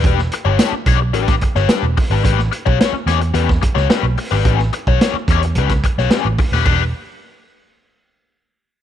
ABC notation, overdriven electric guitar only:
X:1
M:4/4
L:1/16
Q:1/4=109
K:Edor
V:1 name="Overdriven electric guitar"
[DGB] z2 [DGc] [DGc] z [DGc] z [DGB] z2 [DGc] [DGB] z2 [DGB] | [CGB] z2 [CGc] [CGc] z [CGc] z [CGB] z2 [CGc] [CGB] z2 [CGB] | [CGB] z2 [CGc] [CGc] z [CGc] z [CGB] z2 [CGc] [CGB] z2 [CGB] | [DGB] z12 z3 |]